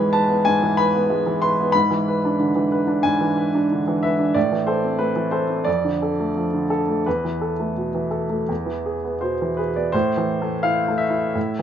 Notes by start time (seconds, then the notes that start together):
Already playing: G#2 G#3 B3 B4 G#5 B5
0.00 E3
0.13 B4 A5
0.30 B3
0.45 G#2 G#5
0.63 E3
0.77 B4 B5
0.95 B3
1.10 G#3
1.26 E3
1.42 B4 C6
1.60 B3
1.72 G#2 B5
1.91 E3
2.08 B4
2.25 D4
2.39 D3
2.56 E3
2.72 B4
2.88 D4
3.03 G#2 G#5
3.21 E3
3.38 B4
3.55 D4
3.72 D3
3.88 E3
4.03 B4 E5
4.19 D4
4.34 A2 D5
4.52 E3
4.67 A4 C5
4.84 C4
4.99 A3 B4
5.16 E3
5.31 A4 C5
5.50 C4
5.65 F2 D5
5.85 D3
6.02 A4
6.20 A3
6.37 F3
6.54 D3
6.70 A4
6.88 A3
7.06 E2 B4
7.25 E3
7.41 A4
7.60 A3
7.77 B2
7.95 E3
8.11 A4
8.30 A3
8.49 E2
8.66 E3
8.86 G#4
9.04 B3
9.21 B2 C5
9.42 E3
9.57 G#4 B4
9.76 B3 D5
9.92 A2 C5
10.17 E3
10.42 A3
10.63 E4 F5
10.88 A3
10.98 E5
11.10 E4
11.35 A2